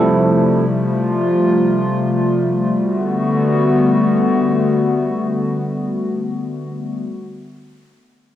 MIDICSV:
0, 0, Header, 1, 3, 480
1, 0, Start_track
1, 0, Key_signature, 1, "major"
1, 0, Tempo, 500000
1, 8019, End_track
2, 0, Start_track
2, 0, Title_t, "Tine electric piano"
2, 0, Program_c, 0, 4
2, 0, Control_c, 0, 64, 127
2, 0, Note_on_c, 0, 53, 83
2, 0, Note_on_c, 0, 60, 79
2, 0, Note_on_c, 0, 64, 80
2, 0, Note_on_c, 0, 67, 76
2, 0, Note_on_c, 0, 69, 96
2, 463, Note_off_c, 0, 53, 0
2, 467, Note_off_c, 0, 60, 0
2, 470, Note_off_c, 0, 64, 0
2, 473, Note_off_c, 0, 67, 0
2, 477, Note_off_c, 0, 69, 0
2, 623, Control_c, 0, 64, 0
2, 8019, End_track
3, 0, Start_track
3, 0, Title_t, "Analog synth pad"
3, 0, Program_c, 1, 89
3, 0, Note_on_c, 1, 48, 75
3, 0, Note_on_c, 1, 53, 70
3, 0, Note_on_c, 1, 55, 68
3, 0, Note_on_c, 1, 57, 72
3, 0, Note_on_c, 1, 64, 86
3, 591, Note_off_c, 1, 64, 0
3, 612, Note_on_c, 1, 65, 85
3, 2612, Note_off_c, 1, 53, 0
3, 2613, Note_off_c, 1, 48, 0
3, 2613, Note_off_c, 1, 55, 0
3, 2613, Note_off_c, 1, 57, 0
3, 2631, Note_off_c, 1, 65, 0
3, 2652, Note_on_c, 1, 50, 78
3, 2652, Note_on_c, 1, 55, 66
3, 2652, Note_on_c, 1, 57, 68
3, 2652, Note_on_c, 1, 59, 71
3, 2652, Note_on_c, 1, 66, 85
3, 6747, Note_off_c, 1, 50, 0
3, 6747, Note_off_c, 1, 59, 0
3, 6747, Note_off_c, 1, 66, 0
3, 6748, Note_off_c, 1, 55, 0
3, 6748, Note_off_c, 1, 57, 0
3, 8019, End_track
0, 0, End_of_file